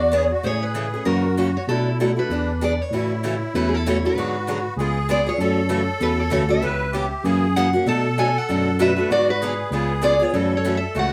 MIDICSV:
0, 0, Header, 1, 5, 480
1, 0, Start_track
1, 0, Key_signature, 3, "major"
1, 0, Tempo, 309278
1, 677, Time_signature, 4, 2, 24, 8
1, 17271, End_track
2, 0, Start_track
2, 0, Title_t, "Steel-string acoustic guitar"
2, 0, Program_c, 0, 25
2, 0, Note_on_c, 0, 74, 89
2, 263, Note_off_c, 0, 74, 0
2, 263, Note_on_c, 0, 73, 89
2, 435, Note_off_c, 0, 73, 0
2, 684, Note_on_c, 0, 72, 58
2, 715, Note_off_c, 0, 72, 0
2, 721, Note_on_c, 0, 73, 93
2, 962, Note_off_c, 0, 73, 0
2, 971, Note_on_c, 0, 71, 70
2, 1598, Note_off_c, 0, 71, 0
2, 1634, Note_on_c, 0, 70, 80
2, 2083, Note_off_c, 0, 70, 0
2, 2434, Note_on_c, 0, 73, 70
2, 2512, Note_off_c, 0, 73, 0
2, 2617, Note_on_c, 0, 69, 84
2, 3056, Note_off_c, 0, 69, 0
2, 3397, Note_on_c, 0, 71, 70
2, 4098, Note_on_c, 0, 74, 72
2, 4278, Note_off_c, 0, 71, 0
2, 4371, Note_off_c, 0, 74, 0
2, 4371, Note_on_c, 0, 73, 69
2, 5507, Note_off_c, 0, 73, 0
2, 5513, Note_on_c, 0, 71, 75
2, 5715, Note_off_c, 0, 71, 0
2, 5723, Note_on_c, 0, 68, 56
2, 5810, Note_off_c, 0, 68, 0
2, 5810, Note_on_c, 0, 69, 71
2, 5991, Note_off_c, 0, 69, 0
2, 6015, Note_on_c, 0, 73, 77
2, 6278, Note_off_c, 0, 73, 0
2, 6302, Note_on_c, 0, 71, 78
2, 7651, Note_off_c, 0, 71, 0
2, 7932, Note_on_c, 0, 74, 94
2, 8197, Note_off_c, 0, 74, 0
2, 8206, Note_on_c, 0, 73, 74
2, 9282, Note_off_c, 0, 73, 0
2, 9354, Note_on_c, 0, 71, 86
2, 9432, Note_off_c, 0, 71, 0
2, 9616, Note_on_c, 0, 73, 80
2, 9796, Note_off_c, 0, 73, 0
2, 9814, Note_on_c, 0, 73, 90
2, 9892, Note_off_c, 0, 73, 0
2, 10093, Note_on_c, 0, 76, 85
2, 11466, Note_off_c, 0, 76, 0
2, 11739, Note_on_c, 0, 78, 93
2, 12224, Note_off_c, 0, 78, 0
2, 12238, Note_on_c, 0, 81, 104
2, 12705, Note_off_c, 0, 81, 0
2, 12712, Note_on_c, 0, 80, 93
2, 13005, Note_off_c, 0, 80, 0
2, 13005, Note_on_c, 0, 78, 93
2, 13678, Note_off_c, 0, 78, 0
2, 13684, Note_on_c, 0, 76, 94
2, 14110, Note_off_c, 0, 76, 0
2, 14154, Note_on_c, 0, 74, 95
2, 14399, Note_off_c, 0, 74, 0
2, 14435, Note_on_c, 0, 71, 79
2, 15574, Note_off_c, 0, 71, 0
2, 15581, Note_on_c, 0, 74, 93
2, 15871, Note_off_c, 0, 74, 0
2, 15871, Note_on_c, 0, 73, 81
2, 16374, Note_off_c, 0, 73, 0
2, 16405, Note_on_c, 0, 73, 76
2, 16710, Note_off_c, 0, 73, 0
2, 16719, Note_on_c, 0, 76, 85
2, 16998, Note_off_c, 0, 76, 0
2, 17058, Note_on_c, 0, 78, 89
2, 17271, Note_off_c, 0, 78, 0
2, 17271, End_track
3, 0, Start_track
3, 0, Title_t, "Accordion"
3, 0, Program_c, 1, 21
3, 0, Note_on_c, 1, 66, 93
3, 211, Note_on_c, 1, 68, 86
3, 219, Note_off_c, 1, 66, 0
3, 479, Note_on_c, 1, 66, 76
3, 494, Note_off_c, 1, 68, 0
3, 683, Note_off_c, 1, 66, 0
3, 698, Note_on_c, 1, 68, 86
3, 1636, Note_on_c, 1, 66, 81
3, 1678, Note_off_c, 1, 68, 0
3, 2619, Note_on_c, 1, 64, 74
3, 2628, Note_off_c, 1, 66, 0
3, 3585, Note_on_c, 1, 62, 67
3, 3599, Note_off_c, 1, 64, 0
3, 4282, Note_off_c, 1, 62, 0
3, 4537, Note_on_c, 1, 64, 86
3, 6388, Note_off_c, 1, 64, 0
3, 6476, Note_on_c, 1, 66, 92
3, 7357, Note_off_c, 1, 66, 0
3, 7406, Note_on_c, 1, 68, 98
3, 8303, Note_off_c, 1, 68, 0
3, 8364, Note_on_c, 1, 69, 106
3, 10286, Note_on_c, 1, 71, 104
3, 10341, Note_off_c, 1, 69, 0
3, 10745, Note_on_c, 1, 67, 88
3, 10779, Note_off_c, 1, 71, 0
3, 11242, Note_on_c, 1, 68, 106
3, 11248, Note_off_c, 1, 67, 0
3, 11949, Note_off_c, 1, 68, 0
3, 12214, Note_on_c, 1, 69, 106
3, 13640, Note_on_c, 1, 71, 86
3, 13690, Note_off_c, 1, 69, 0
3, 14122, Note_on_c, 1, 66, 90
3, 14134, Note_off_c, 1, 71, 0
3, 14594, Note_on_c, 1, 68, 88
3, 14615, Note_off_c, 1, 66, 0
3, 15058, Note_off_c, 1, 68, 0
3, 15081, Note_on_c, 1, 68, 97
3, 16042, Note_on_c, 1, 69, 91
3, 16068, Note_off_c, 1, 68, 0
3, 16995, Note_on_c, 1, 66, 89
3, 17029, Note_off_c, 1, 69, 0
3, 17271, Note_off_c, 1, 66, 0
3, 17271, End_track
4, 0, Start_track
4, 0, Title_t, "Steel-string acoustic guitar"
4, 0, Program_c, 2, 25
4, 180, Note_on_c, 2, 52, 91
4, 198, Note_on_c, 2, 68, 100
4, 199, Note_on_c, 2, 59, 84
4, 204, Note_on_c, 2, 62, 89
4, 352, Note_off_c, 2, 52, 0
4, 361, Note_off_c, 2, 59, 0
4, 361, Note_off_c, 2, 68, 0
4, 364, Note_off_c, 2, 62, 0
4, 672, Note_on_c, 2, 49, 56
4, 677, Note_on_c, 2, 52, 59
4, 685, Note_on_c, 2, 57, 66
4, 691, Note_on_c, 2, 61, 70
4, 701, Note_on_c, 2, 68, 66
4, 976, Note_off_c, 2, 49, 0
4, 978, Note_off_c, 2, 52, 0
4, 982, Note_off_c, 2, 57, 0
4, 985, Note_off_c, 2, 61, 0
4, 991, Note_off_c, 2, 68, 0
4, 1155, Note_on_c, 2, 49, 80
4, 1159, Note_on_c, 2, 52, 73
4, 1162, Note_on_c, 2, 57, 89
4, 1174, Note_on_c, 2, 61, 76
4, 1178, Note_on_c, 2, 68, 72
4, 1320, Note_off_c, 2, 49, 0
4, 1322, Note_off_c, 2, 52, 0
4, 1324, Note_off_c, 2, 57, 0
4, 1330, Note_off_c, 2, 61, 0
4, 1332, Note_off_c, 2, 68, 0
4, 1453, Note_on_c, 2, 68, 53
4, 1470, Note_on_c, 2, 61, 38
4, 1476, Note_on_c, 2, 57, 42
4, 1626, Note_off_c, 2, 61, 0
4, 1631, Note_off_c, 2, 57, 0
4, 1632, Note_on_c, 2, 52, 62
4, 1633, Note_on_c, 2, 49, 62
4, 1635, Note_off_c, 2, 68, 0
4, 1637, Note_on_c, 2, 58, 68
4, 1641, Note_on_c, 2, 66, 62
4, 1645, Note_on_c, 2, 61, 69
4, 1937, Note_off_c, 2, 49, 0
4, 1937, Note_off_c, 2, 52, 0
4, 1939, Note_off_c, 2, 58, 0
4, 1941, Note_off_c, 2, 66, 0
4, 1943, Note_off_c, 2, 61, 0
4, 2132, Note_on_c, 2, 52, 74
4, 2133, Note_on_c, 2, 49, 82
4, 2139, Note_on_c, 2, 58, 89
4, 2142, Note_on_c, 2, 61, 85
4, 2150, Note_on_c, 2, 66, 94
4, 2290, Note_off_c, 2, 49, 0
4, 2290, Note_off_c, 2, 52, 0
4, 2293, Note_off_c, 2, 58, 0
4, 2294, Note_off_c, 2, 61, 0
4, 2299, Note_off_c, 2, 66, 0
4, 2620, Note_on_c, 2, 47, 56
4, 2625, Note_on_c, 2, 54, 61
4, 2629, Note_on_c, 2, 57, 54
4, 2638, Note_on_c, 2, 62, 61
4, 2639, Note_on_c, 2, 66, 59
4, 2912, Note_off_c, 2, 47, 0
4, 2914, Note_off_c, 2, 54, 0
4, 2916, Note_off_c, 2, 57, 0
4, 2920, Note_off_c, 2, 62, 0
4, 2921, Note_off_c, 2, 66, 0
4, 3103, Note_on_c, 2, 47, 75
4, 3108, Note_on_c, 2, 54, 76
4, 3113, Note_on_c, 2, 57, 79
4, 3116, Note_on_c, 2, 62, 84
4, 3119, Note_on_c, 2, 66, 86
4, 3256, Note_off_c, 2, 47, 0
4, 3258, Note_off_c, 2, 54, 0
4, 3261, Note_off_c, 2, 57, 0
4, 3262, Note_off_c, 2, 62, 0
4, 3264, Note_off_c, 2, 66, 0
4, 3361, Note_on_c, 2, 66, 48
4, 3380, Note_on_c, 2, 62, 41
4, 3403, Note_on_c, 2, 57, 43
4, 3553, Note_off_c, 2, 66, 0
4, 3562, Note_off_c, 2, 62, 0
4, 3573, Note_on_c, 2, 52, 55
4, 3574, Note_off_c, 2, 57, 0
4, 3589, Note_on_c, 2, 62, 59
4, 3590, Note_on_c, 2, 59, 63
4, 3606, Note_on_c, 2, 68, 62
4, 3869, Note_off_c, 2, 52, 0
4, 3876, Note_off_c, 2, 62, 0
4, 3877, Note_off_c, 2, 59, 0
4, 3885, Note_off_c, 2, 68, 0
4, 4055, Note_on_c, 2, 52, 78
4, 4057, Note_on_c, 2, 59, 86
4, 4068, Note_on_c, 2, 62, 81
4, 4072, Note_on_c, 2, 68, 87
4, 4212, Note_off_c, 2, 52, 0
4, 4213, Note_off_c, 2, 59, 0
4, 4218, Note_off_c, 2, 62, 0
4, 4221, Note_off_c, 2, 68, 0
4, 4541, Note_on_c, 2, 49, 56
4, 4547, Note_on_c, 2, 52, 62
4, 4555, Note_on_c, 2, 57, 65
4, 4559, Note_on_c, 2, 61, 67
4, 4561, Note_on_c, 2, 66, 70
4, 4833, Note_off_c, 2, 49, 0
4, 4836, Note_off_c, 2, 52, 0
4, 4840, Note_off_c, 2, 57, 0
4, 4842, Note_off_c, 2, 61, 0
4, 4843, Note_off_c, 2, 66, 0
4, 5017, Note_on_c, 2, 49, 77
4, 5025, Note_on_c, 2, 52, 82
4, 5026, Note_on_c, 2, 57, 92
4, 5037, Note_on_c, 2, 61, 92
4, 5037, Note_on_c, 2, 66, 91
4, 5174, Note_off_c, 2, 49, 0
4, 5178, Note_off_c, 2, 52, 0
4, 5178, Note_off_c, 2, 57, 0
4, 5183, Note_off_c, 2, 66, 0
4, 5184, Note_off_c, 2, 61, 0
4, 5509, Note_on_c, 2, 49, 66
4, 5514, Note_on_c, 2, 52, 68
4, 5520, Note_on_c, 2, 57, 73
4, 5523, Note_on_c, 2, 61, 70
4, 5525, Note_on_c, 2, 66, 70
4, 5797, Note_off_c, 2, 49, 0
4, 5799, Note_off_c, 2, 52, 0
4, 5802, Note_off_c, 2, 57, 0
4, 5804, Note_off_c, 2, 61, 0
4, 5805, Note_off_c, 2, 66, 0
4, 5994, Note_on_c, 2, 49, 84
4, 6001, Note_on_c, 2, 52, 95
4, 6007, Note_on_c, 2, 57, 97
4, 6007, Note_on_c, 2, 61, 102
4, 6016, Note_on_c, 2, 66, 102
4, 6142, Note_off_c, 2, 49, 0
4, 6146, Note_off_c, 2, 52, 0
4, 6149, Note_off_c, 2, 57, 0
4, 6149, Note_off_c, 2, 61, 0
4, 6153, Note_off_c, 2, 66, 0
4, 6288, Note_on_c, 2, 66, 64
4, 6297, Note_on_c, 2, 61, 58
4, 6324, Note_on_c, 2, 57, 47
4, 6457, Note_off_c, 2, 66, 0
4, 6462, Note_off_c, 2, 61, 0
4, 6475, Note_off_c, 2, 57, 0
4, 6480, Note_on_c, 2, 54, 64
4, 6482, Note_on_c, 2, 59, 60
4, 6484, Note_on_c, 2, 50, 65
4, 6492, Note_on_c, 2, 68, 69
4, 6493, Note_on_c, 2, 66, 72
4, 6762, Note_off_c, 2, 54, 0
4, 6764, Note_off_c, 2, 50, 0
4, 6764, Note_off_c, 2, 59, 0
4, 6769, Note_off_c, 2, 66, 0
4, 6769, Note_off_c, 2, 68, 0
4, 6941, Note_on_c, 2, 50, 73
4, 6954, Note_on_c, 2, 59, 78
4, 6956, Note_on_c, 2, 66, 89
4, 6958, Note_on_c, 2, 54, 86
4, 6964, Note_on_c, 2, 68, 87
4, 7096, Note_off_c, 2, 50, 0
4, 7102, Note_off_c, 2, 59, 0
4, 7103, Note_off_c, 2, 66, 0
4, 7104, Note_off_c, 2, 54, 0
4, 7107, Note_off_c, 2, 68, 0
4, 7435, Note_on_c, 2, 49, 61
4, 7446, Note_on_c, 2, 56, 58
4, 7451, Note_on_c, 2, 59, 68
4, 7455, Note_on_c, 2, 65, 68
4, 7456, Note_on_c, 2, 68, 70
4, 7720, Note_off_c, 2, 49, 0
4, 7725, Note_off_c, 2, 56, 0
4, 7728, Note_off_c, 2, 59, 0
4, 7730, Note_off_c, 2, 65, 0
4, 7731, Note_off_c, 2, 68, 0
4, 7895, Note_on_c, 2, 56, 90
4, 7899, Note_on_c, 2, 49, 89
4, 7909, Note_on_c, 2, 59, 96
4, 7919, Note_on_c, 2, 65, 102
4, 7920, Note_on_c, 2, 68, 90
4, 8053, Note_off_c, 2, 56, 0
4, 8055, Note_off_c, 2, 49, 0
4, 8060, Note_off_c, 2, 59, 0
4, 8065, Note_off_c, 2, 65, 0
4, 8065, Note_off_c, 2, 68, 0
4, 8172, Note_on_c, 2, 68, 61
4, 8191, Note_on_c, 2, 65, 52
4, 8211, Note_on_c, 2, 59, 50
4, 8359, Note_off_c, 2, 68, 0
4, 8369, Note_off_c, 2, 65, 0
4, 8378, Note_off_c, 2, 59, 0
4, 8381, Note_on_c, 2, 49, 59
4, 8387, Note_on_c, 2, 57, 69
4, 8391, Note_on_c, 2, 52, 69
4, 8397, Note_on_c, 2, 61, 70
4, 8407, Note_on_c, 2, 66, 70
4, 8673, Note_off_c, 2, 49, 0
4, 8676, Note_off_c, 2, 57, 0
4, 8678, Note_off_c, 2, 52, 0
4, 8681, Note_off_c, 2, 61, 0
4, 8686, Note_off_c, 2, 66, 0
4, 8831, Note_on_c, 2, 52, 86
4, 8838, Note_on_c, 2, 49, 89
4, 8839, Note_on_c, 2, 57, 86
4, 8844, Note_on_c, 2, 61, 85
4, 8847, Note_on_c, 2, 66, 87
4, 9001, Note_off_c, 2, 52, 0
4, 9004, Note_off_c, 2, 49, 0
4, 9005, Note_off_c, 2, 57, 0
4, 9007, Note_off_c, 2, 61, 0
4, 9008, Note_off_c, 2, 66, 0
4, 9319, Note_on_c, 2, 49, 70
4, 9325, Note_on_c, 2, 52, 72
4, 9325, Note_on_c, 2, 57, 67
4, 9339, Note_on_c, 2, 61, 66
4, 9345, Note_on_c, 2, 66, 75
4, 9622, Note_off_c, 2, 49, 0
4, 9625, Note_off_c, 2, 52, 0
4, 9625, Note_off_c, 2, 57, 0
4, 9632, Note_off_c, 2, 61, 0
4, 9635, Note_off_c, 2, 66, 0
4, 9780, Note_on_c, 2, 49, 90
4, 9793, Note_on_c, 2, 52, 95
4, 9799, Note_on_c, 2, 57, 101
4, 9804, Note_on_c, 2, 66, 95
4, 9805, Note_on_c, 2, 61, 81
4, 9955, Note_off_c, 2, 49, 0
4, 9961, Note_off_c, 2, 52, 0
4, 9964, Note_off_c, 2, 57, 0
4, 9967, Note_off_c, 2, 61, 0
4, 9967, Note_off_c, 2, 66, 0
4, 10068, Note_on_c, 2, 66, 65
4, 10090, Note_on_c, 2, 61, 55
4, 10097, Note_on_c, 2, 57, 45
4, 10263, Note_off_c, 2, 61, 0
4, 10267, Note_off_c, 2, 66, 0
4, 10272, Note_off_c, 2, 57, 0
4, 10275, Note_on_c, 2, 49, 57
4, 10278, Note_on_c, 2, 59, 62
4, 10281, Note_on_c, 2, 61, 71
4, 10282, Note_on_c, 2, 52, 65
4, 10289, Note_on_c, 2, 67, 61
4, 10579, Note_off_c, 2, 49, 0
4, 10581, Note_off_c, 2, 59, 0
4, 10583, Note_off_c, 2, 52, 0
4, 10583, Note_off_c, 2, 61, 0
4, 10587, Note_off_c, 2, 67, 0
4, 10759, Note_on_c, 2, 49, 82
4, 10776, Note_on_c, 2, 61, 83
4, 10778, Note_on_c, 2, 52, 70
4, 10778, Note_on_c, 2, 59, 81
4, 10778, Note_on_c, 2, 67, 86
4, 10924, Note_off_c, 2, 49, 0
4, 10933, Note_off_c, 2, 61, 0
4, 10934, Note_off_c, 2, 52, 0
4, 10934, Note_off_c, 2, 59, 0
4, 10934, Note_off_c, 2, 67, 0
4, 11247, Note_on_c, 2, 49, 63
4, 11254, Note_on_c, 2, 52, 63
4, 11259, Note_on_c, 2, 58, 68
4, 11261, Note_on_c, 2, 61, 64
4, 11270, Note_on_c, 2, 66, 68
4, 11545, Note_off_c, 2, 49, 0
4, 11549, Note_off_c, 2, 52, 0
4, 11552, Note_off_c, 2, 58, 0
4, 11552, Note_off_c, 2, 61, 0
4, 11557, Note_off_c, 2, 66, 0
4, 11737, Note_on_c, 2, 49, 94
4, 11744, Note_on_c, 2, 52, 94
4, 11746, Note_on_c, 2, 58, 91
4, 11749, Note_on_c, 2, 61, 92
4, 11753, Note_on_c, 2, 66, 93
4, 11893, Note_off_c, 2, 49, 0
4, 11897, Note_off_c, 2, 52, 0
4, 11897, Note_off_c, 2, 58, 0
4, 11899, Note_off_c, 2, 61, 0
4, 11901, Note_off_c, 2, 66, 0
4, 12000, Note_on_c, 2, 66, 61
4, 12018, Note_on_c, 2, 61, 57
4, 12036, Note_on_c, 2, 58, 50
4, 12192, Note_off_c, 2, 66, 0
4, 12201, Note_off_c, 2, 61, 0
4, 12205, Note_on_c, 2, 47, 62
4, 12207, Note_on_c, 2, 54, 63
4, 12210, Note_off_c, 2, 58, 0
4, 12216, Note_on_c, 2, 57, 70
4, 12221, Note_on_c, 2, 62, 66
4, 12225, Note_on_c, 2, 66, 72
4, 12504, Note_off_c, 2, 47, 0
4, 12505, Note_off_c, 2, 54, 0
4, 12510, Note_off_c, 2, 57, 0
4, 12512, Note_off_c, 2, 62, 0
4, 12514, Note_off_c, 2, 66, 0
4, 12694, Note_on_c, 2, 47, 81
4, 12694, Note_on_c, 2, 54, 77
4, 12703, Note_on_c, 2, 57, 81
4, 12707, Note_on_c, 2, 66, 85
4, 12709, Note_on_c, 2, 62, 83
4, 12851, Note_off_c, 2, 47, 0
4, 12852, Note_off_c, 2, 54, 0
4, 12856, Note_off_c, 2, 57, 0
4, 12858, Note_off_c, 2, 66, 0
4, 12859, Note_off_c, 2, 62, 0
4, 13172, Note_on_c, 2, 47, 59
4, 13180, Note_on_c, 2, 54, 69
4, 13188, Note_on_c, 2, 62, 68
4, 13190, Note_on_c, 2, 57, 59
4, 13194, Note_on_c, 2, 66, 74
4, 13467, Note_off_c, 2, 47, 0
4, 13472, Note_off_c, 2, 54, 0
4, 13475, Note_off_c, 2, 62, 0
4, 13476, Note_off_c, 2, 57, 0
4, 13478, Note_off_c, 2, 66, 0
4, 13645, Note_on_c, 2, 54, 94
4, 13646, Note_on_c, 2, 47, 95
4, 13655, Note_on_c, 2, 57, 92
4, 13656, Note_on_c, 2, 62, 88
4, 13660, Note_on_c, 2, 66, 105
4, 13806, Note_off_c, 2, 54, 0
4, 13807, Note_off_c, 2, 47, 0
4, 13812, Note_off_c, 2, 57, 0
4, 13812, Note_off_c, 2, 62, 0
4, 13814, Note_off_c, 2, 66, 0
4, 13912, Note_on_c, 2, 66, 62
4, 13932, Note_on_c, 2, 62, 52
4, 13945, Note_on_c, 2, 57, 50
4, 14108, Note_off_c, 2, 66, 0
4, 14118, Note_off_c, 2, 62, 0
4, 14124, Note_off_c, 2, 57, 0
4, 14130, Note_on_c, 2, 50, 59
4, 14144, Note_on_c, 2, 54, 61
4, 14147, Note_on_c, 2, 59, 69
4, 14150, Note_on_c, 2, 66, 74
4, 14159, Note_on_c, 2, 68, 67
4, 14426, Note_off_c, 2, 50, 0
4, 14433, Note_off_c, 2, 54, 0
4, 14435, Note_off_c, 2, 59, 0
4, 14436, Note_off_c, 2, 66, 0
4, 14440, Note_off_c, 2, 68, 0
4, 14617, Note_on_c, 2, 50, 83
4, 14627, Note_on_c, 2, 59, 80
4, 14628, Note_on_c, 2, 54, 89
4, 14639, Note_on_c, 2, 66, 84
4, 14645, Note_on_c, 2, 68, 88
4, 14772, Note_off_c, 2, 50, 0
4, 14777, Note_off_c, 2, 59, 0
4, 14778, Note_off_c, 2, 54, 0
4, 14783, Note_off_c, 2, 66, 0
4, 14786, Note_off_c, 2, 68, 0
4, 15086, Note_on_c, 2, 49, 70
4, 15100, Note_on_c, 2, 56, 68
4, 15104, Note_on_c, 2, 65, 67
4, 15106, Note_on_c, 2, 59, 68
4, 15108, Note_on_c, 2, 68, 68
4, 15383, Note_off_c, 2, 49, 0
4, 15391, Note_off_c, 2, 56, 0
4, 15392, Note_off_c, 2, 65, 0
4, 15394, Note_off_c, 2, 59, 0
4, 15395, Note_off_c, 2, 68, 0
4, 15544, Note_on_c, 2, 49, 89
4, 15554, Note_on_c, 2, 56, 95
4, 15560, Note_on_c, 2, 59, 88
4, 15562, Note_on_c, 2, 65, 92
4, 15569, Note_on_c, 2, 68, 99
4, 15715, Note_off_c, 2, 49, 0
4, 15720, Note_off_c, 2, 56, 0
4, 15723, Note_off_c, 2, 59, 0
4, 15724, Note_off_c, 2, 65, 0
4, 15728, Note_off_c, 2, 68, 0
4, 15823, Note_on_c, 2, 68, 64
4, 15850, Note_on_c, 2, 65, 55
4, 15866, Note_on_c, 2, 59, 45
4, 16023, Note_off_c, 2, 68, 0
4, 16036, Note_off_c, 2, 65, 0
4, 16041, Note_off_c, 2, 59, 0
4, 16041, Note_on_c, 2, 49, 63
4, 16042, Note_on_c, 2, 52, 69
4, 16047, Note_on_c, 2, 57, 57
4, 16050, Note_on_c, 2, 61, 65
4, 16060, Note_on_c, 2, 66, 74
4, 16341, Note_off_c, 2, 49, 0
4, 16341, Note_off_c, 2, 52, 0
4, 16344, Note_off_c, 2, 57, 0
4, 16345, Note_off_c, 2, 61, 0
4, 16350, Note_off_c, 2, 66, 0
4, 16521, Note_on_c, 2, 49, 87
4, 16526, Note_on_c, 2, 61, 85
4, 16530, Note_on_c, 2, 52, 85
4, 16531, Note_on_c, 2, 57, 82
4, 16537, Note_on_c, 2, 66, 91
4, 16683, Note_off_c, 2, 49, 0
4, 16686, Note_off_c, 2, 61, 0
4, 16688, Note_off_c, 2, 52, 0
4, 16689, Note_off_c, 2, 57, 0
4, 16691, Note_off_c, 2, 66, 0
4, 16990, Note_on_c, 2, 49, 68
4, 16990, Note_on_c, 2, 52, 65
4, 17005, Note_on_c, 2, 57, 65
4, 17007, Note_on_c, 2, 66, 79
4, 17009, Note_on_c, 2, 61, 66
4, 17271, Note_off_c, 2, 49, 0
4, 17271, Note_off_c, 2, 52, 0
4, 17271, Note_off_c, 2, 57, 0
4, 17271, Note_off_c, 2, 61, 0
4, 17271, Note_off_c, 2, 66, 0
4, 17271, End_track
5, 0, Start_track
5, 0, Title_t, "Tine electric piano"
5, 0, Program_c, 3, 4
5, 0, Note_on_c, 3, 40, 84
5, 480, Note_off_c, 3, 40, 0
5, 679, Note_on_c, 3, 45, 63
5, 1447, Note_off_c, 3, 45, 0
5, 1636, Note_on_c, 3, 42, 88
5, 2406, Note_off_c, 3, 42, 0
5, 2604, Note_on_c, 3, 47, 67
5, 3371, Note_off_c, 3, 47, 0
5, 3552, Note_on_c, 3, 40, 73
5, 4324, Note_off_c, 3, 40, 0
5, 4519, Note_on_c, 3, 45, 68
5, 5289, Note_off_c, 3, 45, 0
5, 5490, Note_on_c, 3, 40, 81
5, 6255, Note_off_c, 3, 40, 0
5, 6448, Note_on_c, 3, 44, 76
5, 7214, Note_off_c, 3, 44, 0
5, 7396, Note_on_c, 3, 37, 85
5, 8167, Note_off_c, 3, 37, 0
5, 8351, Note_on_c, 3, 42, 78
5, 9124, Note_off_c, 3, 42, 0
5, 9322, Note_on_c, 3, 40, 78
5, 9730, Note_off_c, 3, 40, 0
5, 9797, Note_on_c, 3, 38, 84
5, 10207, Note_off_c, 3, 38, 0
5, 10271, Note_on_c, 3, 37, 74
5, 11043, Note_off_c, 3, 37, 0
5, 11239, Note_on_c, 3, 42, 91
5, 12008, Note_off_c, 3, 42, 0
5, 12200, Note_on_c, 3, 47, 75
5, 12968, Note_off_c, 3, 47, 0
5, 13182, Note_on_c, 3, 42, 80
5, 13941, Note_off_c, 3, 42, 0
5, 14134, Note_on_c, 3, 44, 73
5, 14896, Note_off_c, 3, 44, 0
5, 15065, Note_on_c, 3, 37, 87
5, 15838, Note_off_c, 3, 37, 0
5, 16036, Note_on_c, 3, 42, 74
5, 16804, Note_off_c, 3, 42, 0
5, 16995, Note_on_c, 3, 37, 78
5, 17271, Note_off_c, 3, 37, 0
5, 17271, End_track
0, 0, End_of_file